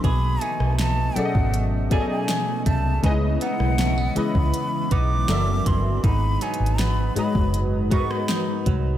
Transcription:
Already playing: E3
0.04 B1 B2 A3 B3 G#4 D#5 B5, kick, closed hi-hat
0.41 A3 D#4 G#5, closed hi-hat
0.60 B1, cross-stick
0.79 D#4 A5, snare, closed hi-hat
1.15 B2 F#3 A3 C#4 G#4 A4 D5 F#5, muted fingered electric bass stroke, closed hi-hat
1.25 D#5
1.35 G#1, kick
1.54 closed hi-hat
1.90 B2 F#3 A3 C#4 D#4 G#4 A4 D5 G#5, kick, closed hi-hat
2.00 D#5
2.11 G#5
2.28 snare, closed hi-hat
2.66 C2 A3 A5, kick, closed hi-hat
3.03 C#2 C#3 E3 G#3 D#4 B4 D#5 G#5, kick, closed hi-hat
3.11 E4
3.41 E3 B3 D#4 F#5, closed hi-hat
3.60 B1, cross-stick
3.78 A3, snare, closed hi-hat
3.98 B3
4.15 C#3 E3 G#3 E4 B4 D#5 B5, muted fingered electric bass stroke, closed hi-hat
4.35 C#2, kick
4.54 closed hi-hat
4.91 B1 E3 B3 D#4 D6, kick, closed hi-hat
5.28 F#1 F#2 F#3 F#4 A4 A#4 D5 E5, snare, closed hi-hat
5.66 G1 E3 C6, kick, closed hi-hat
6.04 G#1 G#2 G#3 D#4 F#4 B4 B5, kick, closed hi-hat
6.41 F#3 B3 D#4 G#5, closed hi-hat
6.54 closed hi-hat
6.60 G#1
6.66 closed hi-hat
6.79 B3 B5, snare, closed hi-hat
7.15 G#2 F#3 G#3 F#4 B4 D#5 B5, muted fingered electric bass stroke, closed hi-hat
7.35 F#1, kick
7.54 closed hi-hat
7.90 G#2 F#3 G#3 B3 D#4 F#4 A#4 D#5 C#6, kick, closed hi-hat
7.99 B4
8.11 B5, cross-stick
8.29 D#4, snare, closed hi-hat
8.66 C2 F#3, kick, closed hi-hat

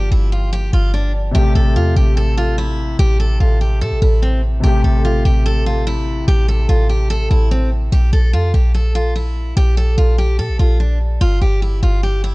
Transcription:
Already playing: F3 A#3 G4
0.11 G1 E4
0.32 F4
0.53 G4
0.73 G1 F4
0.94 D4
1.31 A1 C3 A3 G4
1.38 G4
1.55 A1 A4
1.76 E2 F4
1.96 A1 G4
2.17 A4
2.37 F4
2.58 E4
2.99 A1 G4
3.20 A4
3.40 A1 F4
3.61 G4
3.81 A2 A4
3.92 A1
4.02 A1 E4
4.22 C4
4.60 A1 C3 A3 G4
4.67 G4
4.84 A1 A4
5.05 F4
5.25 A1 G4
5.46 A4
5.66 F4
5.87 E4
6.28 A1 G4
6.48 A4
6.69 A1 F4
6.89 G4
7.10 A4
7.31 A1 E4
7.51 C4
7.92 A#1 G4
8.13 A#1 A4
8.33 F2 F4
8.54 A#1 G4
8.74 A4
8.95 F4
9.15 E4
9.57 A#1 G4
9.77 A4
9.98 A#1 F4
10.18 G4
10.39 A#2 A4
10.49 A#1
10.59 A#1 F4
10.80 D4
11.21 G1 F4
11.41 G1 G4
11.62 E4
11.83 G1 F4
12.03 G4
12.24 E4

